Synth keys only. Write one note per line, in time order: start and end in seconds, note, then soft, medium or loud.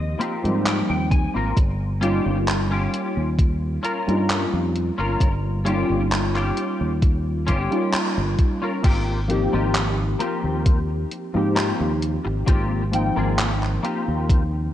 0.00 0.38 F3 medium
0.00 0.38 A#3 medium
0.00 0.39 C4 medium
0.00 0.39 D#4 medium
0.00 0.39 G4 medium
0.43 1.54 F3 medium
0.43 1.55 G3 medium
0.43 1.54 A#3 medium
0.43 1.54 C4 medium
0.43 1.55 D#4 medium
2.01 4.02 G3 medium
2.01 4.02 A#3 medium
2.01 4.02 C#4 medium
2.01 4.03 D#4 medium
2.01 4.03 F4 medium
4.07 5.60 G3 medium
4.07 5.60 A#3 medium
4.07 5.61 C#4 medium
4.07 5.61 D#4 medium
4.07 5.61 F4 medium
5.64 7.65 G3 medium
5.64 7.66 A#3 medium
5.64 7.66 C#4 medium
5.64 7.66 D#4 medium
5.64 7.67 F4 medium
7.70 8.81 G3 medium
7.70 8.81 A#3 medium
7.70 8.82 C#4 medium
7.70 8.82 D#4 medium
7.70 8.82 F4 medium
9.28 11.29 F3 medium
9.28 11.29 A#3 medium
9.28 11.30 C4 medium
9.28 11.30 D#4 medium
9.28 11.30 G4 medium
11.34 12.87 F3 medium
11.34 12.87 A#3 medium
11.34 12.88 C4 medium
11.34 12.88 D#4 medium
11.34 12.89 G4 medium
12.91 14.74 F3 medium
12.91 14.74 A#3 medium
12.91 14.74 C4 medium
12.91 14.74 D#4 medium
12.91 14.74 G5 medium